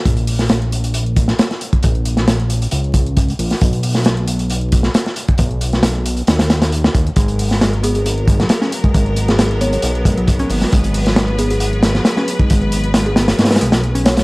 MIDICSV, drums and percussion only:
0, 0, Header, 1, 2, 480
1, 0, Start_track
1, 0, Key_signature, 5, "minor"
1, 0, Tempo, 444444
1, 60, Time_signature, 4, 2, 24, 8
1, 15376, End_track
2, 0, Start_track
2, 0, Title_t, "Drums"
2, 59, Note_on_c, 9, 36, 112
2, 60, Note_on_c, 9, 42, 41
2, 61, Note_off_c, 9, 42, 0
2, 61, Note_on_c, 9, 42, 76
2, 167, Note_off_c, 9, 36, 0
2, 169, Note_off_c, 9, 42, 0
2, 180, Note_on_c, 9, 42, 38
2, 185, Note_off_c, 9, 42, 0
2, 185, Note_on_c, 9, 42, 21
2, 293, Note_off_c, 9, 42, 0
2, 296, Note_on_c, 9, 42, 72
2, 306, Note_on_c, 9, 46, 74
2, 404, Note_off_c, 9, 42, 0
2, 414, Note_off_c, 9, 46, 0
2, 423, Note_on_c, 9, 38, 45
2, 425, Note_on_c, 9, 42, 32
2, 531, Note_off_c, 9, 38, 0
2, 533, Note_off_c, 9, 42, 0
2, 533, Note_on_c, 9, 42, 82
2, 537, Note_on_c, 9, 38, 119
2, 540, Note_off_c, 9, 42, 0
2, 540, Note_on_c, 9, 42, 39
2, 645, Note_off_c, 9, 38, 0
2, 648, Note_off_c, 9, 42, 0
2, 669, Note_on_c, 9, 42, 21
2, 777, Note_off_c, 9, 42, 0
2, 782, Note_on_c, 9, 42, 76
2, 786, Note_off_c, 9, 42, 0
2, 786, Note_on_c, 9, 42, 67
2, 894, Note_off_c, 9, 42, 0
2, 906, Note_on_c, 9, 42, 45
2, 907, Note_off_c, 9, 42, 0
2, 907, Note_on_c, 9, 42, 31
2, 1014, Note_off_c, 9, 42, 0
2, 1014, Note_on_c, 9, 42, 85
2, 1021, Note_off_c, 9, 42, 0
2, 1021, Note_on_c, 9, 42, 42
2, 1129, Note_off_c, 9, 42, 0
2, 1149, Note_on_c, 9, 42, 20
2, 1257, Note_off_c, 9, 42, 0
2, 1257, Note_on_c, 9, 42, 64
2, 1258, Note_on_c, 9, 36, 90
2, 1261, Note_off_c, 9, 42, 0
2, 1261, Note_on_c, 9, 42, 73
2, 1366, Note_off_c, 9, 36, 0
2, 1369, Note_off_c, 9, 42, 0
2, 1380, Note_on_c, 9, 38, 53
2, 1391, Note_on_c, 9, 42, 30
2, 1488, Note_off_c, 9, 38, 0
2, 1497, Note_off_c, 9, 42, 0
2, 1497, Note_on_c, 9, 42, 81
2, 1504, Note_off_c, 9, 42, 0
2, 1504, Note_on_c, 9, 38, 119
2, 1504, Note_on_c, 9, 42, 41
2, 1612, Note_off_c, 9, 38, 0
2, 1612, Note_off_c, 9, 42, 0
2, 1629, Note_on_c, 9, 38, 51
2, 1629, Note_on_c, 9, 42, 21
2, 1737, Note_off_c, 9, 38, 0
2, 1737, Note_off_c, 9, 42, 0
2, 1739, Note_on_c, 9, 42, 74
2, 1847, Note_off_c, 9, 42, 0
2, 1867, Note_on_c, 9, 36, 93
2, 1867, Note_on_c, 9, 42, 33
2, 1973, Note_off_c, 9, 42, 0
2, 1973, Note_on_c, 9, 42, 90
2, 1975, Note_off_c, 9, 36, 0
2, 1983, Note_off_c, 9, 42, 0
2, 1983, Note_on_c, 9, 42, 42
2, 1987, Note_on_c, 9, 36, 94
2, 2091, Note_off_c, 9, 42, 0
2, 2095, Note_off_c, 9, 36, 0
2, 2106, Note_on_c, 9, 42, 21
2, 2214, Note_off_c, 9, 42, 0
2, 2218, Note_on_c, 9, 42, 61
2, 2220, Note_off_c, 9, 42, 0
2, 2220, Note_on_c, 9, 42, 73
2, 2328, Note_off_c, 9, 42, 0
2, 2343, Note_on_c, 9, 38, 51
2, 2348, Note_on_c, 9, 42, 31
2, 2451, Note_off_c, 9, 38, 0
2, 2456, Note_off_c, 9, 42, 0
2, 2459, Note_on_c, 9, 42, 84
2, 2460, Note_on_c, 9, 38, 108
2, 2462, Note_off_c, 9, 42, 0
2, 2462, Note_on_c, 9, 42, 43
2, 2568, Note_off_c, 9, 38, 0
2, 2570, Note_off_c, 9, 42, 0
2, 2589, Note_on_c, 9, 42, 21
2, 2697, Note_off_c, 9, 42, 0
2, 2698, Note_on_c, 9, 42, 68
2, 2702, Note_off_c, 9, 42, 0
2, 2702, Note_on_c, 9, 42, 71
2, 2810, Note_off_c, 9, 42, 0
2, 2828, Note_on_c, 9, 42, 31
2, 2832, Note_off_c, 9, 42, 0
2, 2832, Note_on_c, 9, 42, 46
2, 2930, Note_off_c, 9, 42, 0
2, 2930, Note_on_c, 9, 42, 74
2, 2941, Note_off_c, 9, 42, 0
2, 2941, Note_on_c, 9, 42, 43
2, 3049, Note_off_c, 9, 42, 0
2, 3069, Note_on_c, 9, 42, 20
2, 3173, Note_off_c, 9, 42, 0
2, 3173, Note_on_c, 9, 42, 63
2, 3174, Note_on_c, 9, 36, 95
2, 3181, Note_off_c, 9, 42, 0
2, 3181, Note_on_c, 9, 42, 75
2, 3282, Note_off_c, 9, 36, 0
2, 3289, Note_off_c, 9, 42, 0
2, 3309, Note_on_c, 9, 42, 32
2, 3417, Note_off_c, 9, 42, 0
2, 3419, Note_on_c, 9, 42, 79
2, 3422, Note_off_c, 9, 42, 0
2, 3422, Note_on_c, 9, 42, 42
2, 3424, Note_on_c, 9, 36, 100
2, 3530, Note_off_c, 9, 42, 0
2, 3532, Note_off_c, 9, 36, 0
2, 3547, Note_on_c, 9, 42, 22
2, 3562, Note_off_c, 9, 42, 0
2, 3562, Note_on_c, 9, 42, 39
2, 3662, Note_off_c, 9, 42, 0
2, 3662, Note_on_c, 9, 42, 76
2, 3664, Note_on_c, 9, 46, 63
2, 3770, Note_off_c, 9, 42, 0
2, 3772, Note_off_c, 9, 46, 0
2, 3787, Note_on_c, 9, 42, 31
2, 3792, Note_on_c, 9, 38, 37
2, 3895, Note_off_c, 9, 42, 0
2, 3900, Note_off_c, 9, 38, 0
2, 3900, Note_on_c, 9, 42, 41
2, 3905, Note_on_c, 9, 36, 108
2, 3906, Note_off_c, 9, 42, 0
2, 3906, Note_on_c, 9, 42, 80
2, 4013, Note_off_c, 9, 36, 0
2, 4014, Note_off_c, 9, 42, 0
2, 4026, Note_on_c, 9, 42, 20
2, 4027, Note_off_c, 9, 42, 0
2, 4027, Note_on_c, 9, 42, 42
2, 4135, Note_off_c, 9, 42, 0
2, 4136, Note_on_c, 9, 46, 82
2, 4140, Note_on_c, 9, 42, 75
2, 4244, Note_off_c, 9, 46, 0
2, 4248, Note_off_c, 9, 42, 0
2, 4264, Note_on_c, 9, 38, 46
2, 4267, Note_on_c, 9, 42, 31
2, 4370, Note_off_c, 9, 42, 0
2, 4370, Note_on_c, 9, 42, 82
2, 4372, Note_off_c, 9, 38, 0
2, 4381, Note_off_c, 9, 42, 0
2, 4381, Note_on_c, 9, 42, 42
2, 4384, Note_on_c, 9, 38, 110
2, 4489, Note_off_c, 9, 42, 0
2, 4492, Note_off_c, 9, 38, 0
2, 4505, Note_on_c, 9, 42, 21
2, 4613, Note_off_c, 9, 42, 0
2, 4618, Note_on_c, 9, 42, 71
2, 4619, Note_off_c, 9, 42, 0
2, 4619, Note_on_c, 9, 42, 69
2, 4727, Note_off_c, 9, 42, 0
2, 4744, Note_on_c, 9, 42, 31
2, 4750, Note_off_c, 9, 42, 0
2, 4750, Note_on_c, 9, 42, 39
2, 4857, Note_off_c, 9, 42, 0
2, 4857, Note_on_c, 9, 42, 41
2, 4864, Note_off_c, 9, 42, 0
2, 4864, Note_on_c, 9, 42, 79
2, 4972, Note_off_c, 9, 42, 0
2, 4982, Note_on_c, 9, 42, 19
2, 5090, Note_off_c, 9, 42, 0
2, 5097, Note_on_c, 9, 42, 71
2, 5101, Note_off_c, 9, 42, 0
2, 5101, Note_on_c, 9, 42, 73
2, 5103, Note_on_c, 9, 36, 95
2, 5209, Note_off_c, 9, 42, 0
2, 5211, Note_off_c, 9, 36, 0
2, 5218, Note_on_c, 9, 38, 52
2, 5225, Note_on_c, 9, 42, 31
2, 5326, Note_off_c, 9, 38, 0
2, 5333, Note_off_c, 9, 42, 0
2, 5338, Note_on_c, 9, 42, 41
2, 5342, Note_off_c, 9, 42, 0
2, 5342, Note_on_c, 9, 42, 85
2, 5344, Note_on_c, 9, 38, 114
2, 5450, Note_off_c, 9, 42, 0
2, 5452, Note_off_c, 9, 38, 0
2, 5464, Note_on_c, 9, 42, 21
2, 5469, Note_on_c, 9, 38, 48
2, 5572, Note_off_c, 9, 42, 0
2, 5572, Note_on_c, 9, 42, 74
2, 5577, Note_off_c, 9, 38, 0
2, 5578, Note_off_c, 9, 42, 0
2, 5578, Note_on_c, 9, 42, 73
2, 5686, Note_off_c, 9, 42, 0
2, 5706, Note_on_c, 9, 42, 33
2, 5709, Note_on_c, 9, 36, 89
2, 5808, Note_off_c, 9, 42, 0
2, 5808, Note_on_c, 9, 42, 86
2, 5817, Note_off_c, 9, 36, 0
2, 5819, Note_off_c, 9, 42, 0
2, 5819, Note_on_c, 9, 42, 39
2, 5820, Note_on_c, 9, 36, 107
2, 5927, Note_off_c, 9, 42, 0
2, 5928, Note_off_c, 9, 36, 0
2, 5948, Note_on_c, 9, 42, 20
2, 6056, Note_off_c, 9, 42, 0
2, 6059, Note_on_c, 9, 42, 70
2, 6062, Note_off_c, 9, 42, 0
2, 6062, Note_on_c, 9, 42, 72
2, 6170, Note_off_c, 9, 42, 0
2, 6187, Note_on_c, 9, 42, 30
2, 6192, Note_on_c, 9, 38, 46
2, 6294, Note_off_c, 9, 38, 0
2, 6294, Note_on_c, 9, 38, 114
2, 6295, Note_off_c, 9, 42, 0
2, 6297, Note_on_c, 9, 42, 88
2, 6302, Note_off_c, 9, 42, 0
2, 6302, Note_on_c, 9, 42, 39
2, 6402, Note_off_c, 9, 38, 0
2, 6410, Note_off_c, 9, 42, 0
2, 6429, Note_on_c, 9, 42, 21
2, 6537, Note_off_c, 9, 42, 0
2, 6542, Note_on_c, 9, 42, 72
2, 6544, Note_off_c, 9, 42, 0
2, 6544, Note_on_c, 9, 42, 69
2, 6652, Note_off_c, 9, 42, 0
2, 6660, Note_on_c, 9, 42, 39
2, 6667, Note_off_c, 9, 42, 0
2, 6667, Note_on_c, 9, 42, 29
2, 6774, Note_off_c, 9, 42, 0
2, 6774, Note_on_c, 9, 42, 83
2, 6782, Note_off_c, 9, 42, 0
2, 6782, Note_on_c, 9, 42, 39
2, 6785, Note_on_c, 9, 38, 104
2, 6890, Note_off_c, 9, 42, 0
2, 6893, Note_off_c, 9, 38, 0
2, 6902, Note_on_c, 9, 38, 103
2, 6905, Note_on_c, 9, 42, 74
2, 6908, Note_off_c, 9, 42, 0
2, 6908, Note_on_c, 9, 42, 19
2, 7010, Note_off_c, 9, 38, 0
2, 7016, Note_off_c, 9, 42, 0
2, 7017, Note_on_c, 9, 42, 73
2, 7019, Note_on_c, 9, 38, 105
2, 7023, Note_off_c, 9, 42, 0
2, 7023, Note_on_c, 9, 42, 70
2, 7127, Note_off_c, 9, 38, 0
2, 7131, Note_off_c, 9, 42, 0
2, 7145, Note_on_c, 9, 38, 98
2, 7145, Note_on_c, 9, 42, 75
2, 7149, Note_off_c, 9, 42, 0
2, 7149, Note_on_c, 9, 42, 31
2, 7253, Note_off_c, 9, 38, 0
2, 7257, Note_off_c, 9, 42, 0
2, 7260, Note_on_c, 9, 42, 88
2, 7264, Note_off_c, 9, 42, 0
2, 7264, Note_on_c, 9, 42, 39
2, 7372, Note_off_c, 9, 42, 0
2, 7390, Note_on_c, 9, 38, 101
2, 7390, Note_on_c, 9, 42, 20
2, 7498, Note_off_c, 9, 38, 0
2, 7498, Note_off_c, 9, 42, 0
2, 7501, Note_on_c, 9, 36, 100
2, 7502, Note_on_c, 9, 42, 70
2, 7504, Note_off_c, 9, 42, 0
2, 7504, Note_on_c, 9, 42, 69
2, 7609, Note_off_c, 9, 36, 0
2, 7612, Note_off_c, 9, 42, 0
2, 7631, Note_on_c, 9, 42, 31
2, 7732, Note_off_c, 9, 42, 0
2, 7732, Note_on_c, 9, 42, 92
2, 7739, Note_on_c, 9, 36, 101
2, 7745, Note_off_c, 9, 42, 0
2, 7745, Note_on_c, 9, 42, 40
2, 7847, Note_off_c, 9, 36, 0
2, 7853, Note_off_c, 9, 42, 0
2, 7864, Note_on_c, 9, 42, 40
2, 7870, Note_off_c, 9, 42, 0
2, 7870, Note_on_c, 9, 42, 20
2, 7978, Note_off_c, 9, 42, 0
2, 7982, Note_on_c, 9, 46, 69
2, 7983, Note_on_c, 9, 42, 67
2, 8090, Note_off_c, 9, 46, 0
2, 8091, Note_off_c, 9, 42, 0
2, 8111, Note_on_c, 9, 42, 28
2, 8113, Note_on_c, 9, 38, 49
2, 8219, Note_off_c, 9, 42, 0
2, 8221, Note_off_c, 9, 38, 0
2, 8223, Note_on_c, 9, 38, 110
2, 8225, Note_on_c, 9, 42, 39
2, 8331, Note_off_c, 9, 38, 0
2, 8333, Note_off_c, 9, 42, 0
2, 8353, Note_on_c, 9, 42, 20
2, 8461, Note_off_c, 9, 42, 0
2, 8462, Note_on_c, 9, 42, 69
2, 8465, Note_off_c, 9, 42, 0
2, 8465, Note_on_c, 9, 42, 69
2, 8573, Note_off_c, 9, 42, 0
2, 8584, Note_on_c, 9, 42, 40
2, 8588, Note_off_c, 9, 42, 0
2, 8588, Note_on_c, 9, 42, 28
2, 8696, Note_off_c, 9, 42, 0
2, 8703, Note_on_c, 9, 42, 84
2, 8811, Note_off_c, 9, 42, 0
2, 8830, Note_on_c, 9, 42, 18
2, 8937, Note_on_c, 9, 36, 99
2, 8938, Note_off_c, 9, 42, 0
2, 8939, Note_on_c, 9, 42, 65
2, 8942, Note_off_c, 9, 42, 0
2, 8942, Note_on_c, 9, 42, 68
2, 9045, Note_off_c, 9, 36, 0
2, 9050, Note_off_c, 9, 42, 0
2, 9068, Note_on_c, 9, 38, 53
2, 9069, Note_on_c, 9, 42, 29
2, 9170, Note_off_c, 9, 42, 0
2, 9170, Note_on_c, 9, 42, 85
2, 9176, Note_off_c, 9, 38, 0
2, 9178, Note_on_c, 9, 38, 115
2, 9183, Note_off_c, 9, 42, 0
2, 9183, Note_on_c, 9, 42, 40
2, 9286, Note_off_c, 9, 38, 0
2, 9291, Note_off_c, 9, 42, 0
2, 9306, Note_on_c, 9, 38, 50
2, 9308, Note_on_c, 9, 42, 20
2, 9414, Note_off_c, 9, 38, 0
2, 9416, Note_off_c, 9, 42, 0
2, 9420, Note_on_c, 9, 42, 68
2, 9423, Note_off_c, 9, 42, 0
2, 9423, Note_on_c, 9, 42, 66
2, 9531, Note_off_c, 9, 42, 0
2, 9546, Note_on_c, 9, 36, 90
2, 9546, Note_on_c, 9, 42, 29
2, 9654, Note_off_c, 9, 36, 0
2, 9654, Note_off_c, 9, 42, 0
2, 9659, Note_on_c, 9, 42, 38
2, 9661, Note_on_c, 9, 36, 100
2, 9767, Note_off_c, 9, 42, 0
2, 9769, Note_off_c, 9, 36, 0
2, 9785, Note_on_c, 9, 42, 19
2, 9893, Note_off_c, 9, 42, 0
2, 9897, Note_on_c, 9, 42, 60
2, 9902, Note_off_c, 9, 42, 0
2, 9902, Note_on_c, 9, 42, 69
2, 10010, Note_off_c, 9, 42, 0
2, 10027, Note_on_c, 9, 42, 30
2, 10031, Note_on_c, 9, 38, 54
2, 10135, Note_off_c, 9, 42, 0
2, 10139, Note_off_c, 9, 38, 0
2, 10139, Note_on_c, 9, 42, 92
2, 10142, Note_off_c, 9, 42, 0
2, 10142, Note_on_c, 9, 38, 112
2, 10142, Note_on_c, 9, 42, 39
2, 10250, Note_off_c, 9, 38, 0
2, 10250, Note_off_c, 9, 42, 0
2, 10270, Note_on_c, 9, 42, 20
2, 10378, Note_off_c, 9, 42, 0
2, 10379, Note_on_c, 9, 42, 73
2, 10383, Note_off_c, 9, 42, 0
2, 10383, Note_on_c, 9, 42, 68
2, 10491, Note_off_c, 9, 42, 0
2, 10506, Note_on_c, 9, 42, 44
2, 10510, Note_off_c, 9, 42, 0
2, 10510, Note_on_c, 9, 42, 29
2, 10610, Note_off_c, 9, 42, 0
2, 10610, Note_on_c, 9, 42, 95
2, 10620, Note_off_c, 9, 42, 0
2, 10620, Note_on_c, 9, 42, 39
2, 10728, Note_off_c, 9, 42, 0
2, 10748, Note_on_c, 9, 42, 19
2, 10856, Note_off_c, 9, 42, 0
2, 10857, Note_on_c, 9, 36, 92
2, 10861, Note_on_c, 9, 42, 71
2, 10862, Note_off_c, 9, 42, 0
2, 10862, Note_on_c, 9, 42, 68
2, 10965, Note_off_c, 9, 36, 0
2, 10970, Note_off_c, 9, 42, 0
2, 10989, Note_on_c, 9, 42, 29
2, 11097, Note_off_c, 9, 42, 0
2, 11097, Note_on_c, 9, 42, 83
2, 11102, Note_on_c, 9, 36, 93
2, 11104, Note_off_c, 9, 42, 0
2, 11104, Note_on_c, 9, 42, 39
2, 11210, Note_off_c, 9, 36, 0
2, 11212, Note_off_c, 9, 42, 0
2, 11223, Note_on_c, 9, 42, 36
2, 11231, Note_off_c, 9, 42, 0
2, 11231, Note_on_c, 9, 42, 20
2, 11334, Note_on_c, 9, 46, 70
2, 11339, Note_off_c, 9, 42, 0
2, 11344, Note_on_c, 9, 42, 70
2, 11442, Note_off_c, 9, 46, 0
2, 11452, Note_off_c, 9, 42, 0
2, 11463, Note_on_c, 9, 38, 35
2, 11468, Note_on_c, 9, 42, 30
2, 11571, Note_off_c, 9, 38, 0
2, 11576, Note_off_c, 9, 42, 0
2, 11581, Note_on_c, 9, 42, 39
2, 11585, Note_off_c, 9, 42, 0
2, 11585, Note_on_c, 9, 42, 85
2, 11587, Note_on_c, 9, 36, 108
2, 11693, Note_off_c, 9, 42, 0
2, 11695, Note_off_c, 9, 36, 0
2, 11706, Note_on_c, 9, 42, 20
2, 11709, Note_off_c, 9, 42, 0
2, 11709, Note_on_c, 9, 42, 41
2, 11817, Note_off_c, 9, 42, 0
2, 11819, Note_on_c, 9, 42, 72
2, 11823, Note_on_c, 9, 46, 75
2, 11927, Note_off_c, 9, 42, 0
2, 11931, Note_off_c, 9, 46, 0
2, 11945, Note_on_c, 9, 42, 31
2, 11952, Note_on_c, 9, 38, 48
2, 12053, Note_off_c, 9, 42, 0
2, 12057, Note_off_c, 9, 38, 0
2, 12057, Note_on_c, 9, 38, 127
2, 12059, Note_on_c, 9, 42, 40
2, 12165, Note_off_c, 9, 38, 0
2, 12167, Note_off_c, 9, 42, 0
2, 12184, Note_on_c, 9, 42, 21
2, 12292, Note_off_c, 9, 42, 0
2, 12297, Note_on_c, 9, 42, 66
2, 12299, Note_off_c, 9, 42, 0
2, 12299, Note_on_c, 9, 42, 70
2, 12407, Note_off_c, 9, 42, 0
2, 12423, Note_on_c, 9, 42, 43
2, 12427, Note_off_c, 9, 42, 0
2, 12427, Note_on_c, 9, 42, 30
2, 12531, Note_off_c, 9, 42, 0
2, 12531, Note_on_c, 9, 42, 83
2, 12540, Note_off_c, 9, 42, 0
2, 12540, Note_on_c, 9, 42, 39
2, 12648, Note_off_c, 9, 42, 0
2, 12668, Note_on_c, 9, 42, 20
2, 12772, Note_on_c, 9, 38, 111
2, 12776, Note_off_c, 9, 42, 0
2, 12780, Note_on_c, 9, 42, 72
2, 12781, Note_off_c, 9, 42, 0
2, 12781, Note_on_c, 9, 42, 75
2, 12880, Note_off_c, 9, 38, 0
2, 12889, Note_off_c, 9, 42, 0
2, 12902, Note_on_c, 9, 38, 54
2, 12905, Note_on_c, 9, 42, 30
2, 13010, Note_off_c, 9, 38, 0
2, 13011, Note_on_c, 9, 38, 111
2, 13013, Note_off_c, 9, 42, 0
2, 13015, Note_on_c, 9, 42, 90
2, 13019, Note_off_c, 9, 42, 0
2, 13019, Note_on_c, 9, 42, 39
2, 13119, Note_off_c, 9, 38, 0
2, 13127, Note_off_c, 9, 42, 0
2, 13139, Note_on_c, 9, 38, 49
2, 13146, Note_on_c, 9, 42, 21
2, 13247, Note_off_c, 9, 38, 0
2, 13254, Note_off_c, 9, 42, 0
2, 13259, Note_on_c, 9, 42, 64
2, 13260, Note_off_c, 9, 42, 0
2, 13260, Note_on_c, 9, 42, 68
2, 13368, Note_off_c, 9, 42, 0
2, 13385, Note_on_c, 9, 42, 31
2, 13386, Note_on_c, 9, 36, 91
2, 13493, Note_off_c, 9, 42, 0
2, 13494, Note_off_c, 9, 36, 0
2, 13498, Note_on_c, 9, 42, 92
2, 13499, Note_off_c, 9, 42, 0
2, 13499, Note_on_c, 9, 42, 42
2, 13508, Note_on_c, 9, 36, 108
2, 13607, Note_off_c, 9, 42, 0
2, 13616, Note_off_c, 9, 36, 0
2, 13626, Note_on_c, 9, 42, 21
2, 13734, Note_off_c, 9, 42, 0
2, 13738, Note_on_c, 9, 42, 74
2, 13744, Note_off_c, 9, 42, 0
2, 13744, Note_on_c, 9, 42, 62
2, 13852, Note_off_c, 9, 42, 0
2, 13864, Note_on_c, 9, 42, 31
2, 13972, Note_off_c, 9, 42, 0
2, 13975, Note_on_c, 9, 42, 92
2, 13976, Note_on_c, 9, 38, 104
2, 13980, Note_off_c, 9, 42, 0
2, 13980, Note_on_c, 9, 42, 41
2, 14084, Note_off_c, 9, 38, 0
2, 14088, Note_off_c, 9, 42, 0
2, 14107, Note_on_c, 9, 42, 21
2, 14213, Note_on_c, 9, 38, 100
2, 14215, Note_off_c, 9, 42, 0
2, 14221, Note_on_c, 9, 42, 75
2, 14222, Note_off_c, 9, 42, 0
2, 14222, Note_on_c, 9, 42, 84
2, 14321, Note_off_c, 9, 38, 0
2, 14330, Note_off_c, 9, 42, 0
2, 14343, Note_on_c, 9, 38, 103
2, 14345, Note_on_c, 9, 42, 31
2, 14353, Note_off_c, 9, 42, 0
2, 14353, Note_on_c, 9, 42, 79
2, 14451, Note_off_c, 9, 38, 0
2, 14458, Note_off_c, 9, 42, 0
2, 14458, Note_on_c, 9, 42, 42
2, 14461, Note_off_c, 9, 42, 0
2, 14461, Note_on_c, 9, 42, 61
2, 14462, Note_on_c, 9, 38, 90
2, 14523, Note_off_c, 9, 38, 0
2, 14523, Note_on_c, 9, 38, 88
2, 14528, Note_off_c, 9, 42, 0
2, 14528, Note_on_c, 9, 42, 67
2, 14587, Note_off_c, 9, 38, 0
2, 14587, Note_off_c, 9, 42, 0
2, 14587, Note_on_c, 9, 38, 85
2, 14587, Note_on_c, 9, 42, 69
2, 14588, Note_off_c, 9, 42, 0
2, 14588, Note_on_c, 9, 42, 20
2, 14643, Note_off_c, 9, 42, 0
2, 14643, Note_on_c, 9, 42, 66
2, 14647, Note_off_c, 9, 38, 0
2, 14647, Note_on_c, 9, 38, 89
2, 14701, Note_off_c, 9, 42, 0
2, 14701, Note_on_c, 9, 42, 62
2, 14755, Note_off_c, 9, 38, 0
2, 14809, Note_off_c, 9, 42, 0
2, 14818, Note_on_c, 9, 38, 100
2, 14823, Note_on_c, 9, 42, 75
2, 14827, Note_off_c, 9, 42, 0
2, 14827, Note_on_c, 9, 42, 32
2, 14926, Note_off_c, 9, 38, 0
2, 14935, Note_off_c, 9, 42, 0
2, 14942, Note_on_c, 9, 42, 43
2, 15050, Note_off_c, 9, 42, 0
2, 15068, Note_on_c, 9, 42, 21
2, 15176, Note_off_c, 9, 42, 0
2, 15180, Note_on_c, 9, 42, 73
2, 15181, Note_off_c, 9, 42, 0
2, 15181, Note_on_c, 9, 42, 82
2, 15184, Note_on_c, 9, 38, 115
2, 15289, Note_off_c, 9, 42, 0
2, 15292, Note_off_c, 9, 38, 0
2, 15300, Note_on_c, 9, 42, 78
2, 15307, Note_on_c, 9, 38, 100
2, 15308, Note_off_c, 9, 42, 0
2, 15308, Note_on_c, 9, 42, 32
2, 15376, Note_off_c, 9, 38, 0
2, 15376, Note_off_c, 9, 42, 0
2, 15376, End_track
0, 0, End_of_file